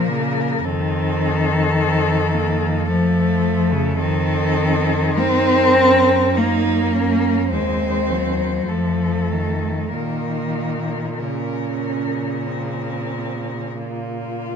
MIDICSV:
0, 0, Header, 1, 5, 480
1, 0, Start_track
1, 0, Key_signature, -5, "minor"
1, 0, Tempo, 1117318
1, 271, Time_signature, 4, 2, 24, 8
1, 1707, Tempo, 1176471
1, 3627, Tempo, 1260504
1, 5067, Tempo, 1363636
1, 5806, End_track
2, 0, Start_track
2, 0, Title_t, "Cello"
2, 0, Program_c, 0, 42
2, 0, Note_on_c, 0, 70, 56
2, 278, Note_on_c, 0, 69, 68
2, 285, Note_off_c, 0, 70, 0
2, 1232, Note_off_c, 0, 69, 0
2, 1235, Note_on_c, 0, 69, 65
2, 1699, Note_off_c, 0, 69, 0
2, 1709, Note_on_c, 0, 69, 68
2, 2186, Note_off_c, 0, 69, 0
2, 2192, Note_on_c, 0, 70, 71
2, 2665, Note_off_c, 0, 70, 0
2, 2672, Note_on_c, 0, 70, 52
2, 3137, Note_off_c, 0, 70, 0
2, 3147, Note_on_c, 0, 72, 57
2, 3629, Note_on_c, 0, 69, 46
2, 3634, Note_off_c, 0, 72, 0
2, 4101, Note_off_c, 0, 69, 0
2, 4105, Note_on_c, 0, 70, 38
2, 4575, Note_off_c, 0, 70, 0
2, 4587, Note_on_c, 0, 70, 34
2, 5532, Note_off_c, 0, 70, 0
2, 5551, Note_on_c, 0, 65, 46
2, 5806, Note_off_c, 0, 65, 0
2, 5806, End_track
3, 0, Start_track
3, 0, Title_t, "Cello"
3, 0, Program_c, 1, 42
3, 0, Note_on_c, 1, 58, 61
3, 278, Note_on_c, 1, 60, 64
3, 285, Note_off_c, 1, 58, 0
3, 759, Note_off_c, 1, 60, 0
3, 766, Note_on_c, 1, 60, 64
3, 1004, Note_on_c, 1, 58, 53
3, 1011, Note_off_c, 1, 60, 0
3, 1238, Note_on_c, 1, 57, 67
3, 1245, Note_off_c, 1, 58, 0
3, 1712, Note_on_c, 1, 60, 68
3, 1718, Note_off_c, 1, 57, 0
3, 2191, Note_off_c, 1, 60, 0
3, 2194, Note_on_c, 1, 63, 72
3, 2440, Note_on_c, 1, 61, 55
3, 2446, Note_off_c, 1, 63, 0
3, 2679, Note_on_c, 1, 63, 70
3, 2685, Note_off_c, 1, 61, 0
3, 2912, Note_on_c, 1, 61, 62
3, 2918, Note_off_c, 1, 63, 0
3, 3148, Note_on_c, 1, 60, 64
3, 3154, Note_off_c, 1, 61, 0
3, 3628, Note_off_c, 1, 60, 0
3, 3631, Note_on_c, 1, 57, 51
3, 4098, Note_on_c, 1, 58, 41
3, 4104, Note_off_c, 1, 57, 0
3, 4532, Note_off_c, 1, 58, 0
3, 4574, Note_on_c, 1, 61, 48
3, 5062, Note_on_c, 1, 60, 38
3, 5067, Note_off_c, 1, 61, 0
3, 5535, Note_off_c, 1, 60, 0
3, 5537, Note_on_c, 1, 58, 33
3, 5806, Note_off_c, 1, 58, 0
3, 5806, End_track
4, 0, Start_track
4, 0, Title_t, "Cello"
4, 0, Program_c, 2, 42
4, 31, Note_on_c, 2, 49, 75
4, 273, Note_on_c, 2, 51, 92
4, 279, Note_off_c, 2, 49, 0
4, 1236, Note_off_c, 2, 51, 0
4, 1239, Note_on_c, 2, 53, 80
4, 1595, Note_on_c, 2, 49, 79
4, 1601, Note_off_c, 2, 53, 0
4, 1711, Note_off_c, 2, 49, 0
4, 1713, Note_on_c, 2, 51, 97
4, 2202, Note_on_c, 2, 60, 110
4, 2208, Note_off_c, 2, 51, 0
4, 2685, Note_on_c, 2, 58, 80
4, 2691, Note_off_c, 2, 60, 0
4, 3153, Note_off_c, 2, 58, 0
4, 3157, Note_on_c, 2, 56, 63
4, 3392, Note_on_c, 2, 54, 57
4, 3398, Note_off_c, 2, 56, 0
4, 3634, Note_on_c, 2, 53, 65
4, 3640, Note_off_c, 2, 54, 0
4, 3867, Note_on_c, 2, 51, 54
4, 3873, Note_off_c, 2, 53, 0
4, 4103, Note_off_c, 2, 51, 0
4, 4107, Note_on_c, 2, 51, 61
4, 4586, Note_on_c, 2, 49, 44
4, 4591, Note_off_c, 2, 51, 0
4, 5789, Note_off_c, 2, 49, 0
4, 5806, End_track
5, 0, Start_track
5, 0, Title_t, "Cello"
5, 0, Program_c, 3, 42
5, 0, Note_on_c, 3, 46, 51
5, 255, Note_off_c, 3, 46, 0
5, 276, Note_on_c, 3, 41, 52
5, 2181, Note_off_c, 3, 41, 0
5, 2197, Note_on_c, 3, 42, 64
5, 3151, Note_on_c, 3, 39, 53
5, 3157, Note_off_c, 3, 42, 0
5, 3625, Note_off_c, 3, 39, 0
5, 3628, Note_on_c, 3, 41, 54
5, 4099, Note_on_c, 3, 46, 40
5, 4105, Note_off_c, 3, 41, 0
5, 5806, Note_off_c, 3, 46, 0
5, 5806, End_track
0, 0, End_of_file